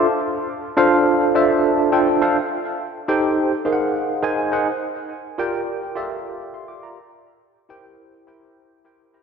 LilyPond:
\new Staff \with { instrumentName = "Tine electric piano" } { \time 4/4 \key g \dorian \tempo 4 = 104 <c'' a''>16 r4 <d' f' a' c'' f''>8. r16 <d' f' a' c'' e''>8. r16 <d' f' a' c'' g''>16 r16 <d' f' a' c'' f''>16 | r4 r16 <ees' g' a' c'' g''>8. r16 <dis' gis' ais' bis' f'' fis''>8. r16 <dis' gis' ais' bis' gis''>16 r16 <dis' gis' ais' bis' fis''>16 | r4 r16 <f' g' bes' d'' g''>8. r16 <f' g' a' bes' d'' e''>8. r16 <e'' c'''>16 <f'' d'''>16 <d'' bes''>16~ | <d'' bes''>16 r4 <e' g' bes' c'' g''>8. r16 <e' g' bes' c'' g''>8. r16 <e' g' bes' c'' g''>16 r16 <e' g' bes' c'' bes''>16 | }